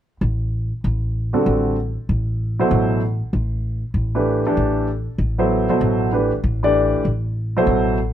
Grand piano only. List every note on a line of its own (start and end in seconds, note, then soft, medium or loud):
1.33 1.74 D3 medium
1.33 1.75 G3 soft
1.33 1.75 C4 soft
1.33 1.75 F#4 soft
1.33 1.75 A4 medium
2.59 3.00 B2 medium
2.59 3.00 F#3 medium
2.59 3.00 E4 soft
2.59 3.00 A4 soft
2.59 3.00 C5 medium
4.15 4.44 E3 medium
4.15 4.44 A3 soft
4.15 4.44 D4 soft
4.15 4.45 G4 soft
4.15 4.45 B4 medium
4.46 4.87 E3 medium
4.46 4.87 A3 medium
4.46 4.87 D4 medium
4.46 4.87 G4 soft
4.46 4.87 A4 medium
5.38 5.68 F#3 medium
5.38 5.68 B3 soft
5.38 5.68 E4 soft
5.38 5.68 A4 soft
5.38 5.68 C5 medium
5.69 6.10 B2 soft
5.69 6.10 F#3 medium
5.69 6.11 E4 soft
5.69 6.11 A4 soft
5.69 6.10 C5 medium
6.12 6.30 E3 soft
6.12 6.30 A3 soft
6.12 6.31 D4 soft
6.12 6.31 G4 soft
6.12 6.31 B4 medium
6.63 7.03 E3 medium
6.63 7.04 A3 medium
6.63 7.04 D4 medium
6.63 7.04 G4 soft
6.63 7.04 D5 medium
7.57 7.97 B2 medium
7.57 7.97 F#3 medium
7.57 7.97 E4 medium
7.57 7.97 A4 medium
7.57 7.97 C5 medium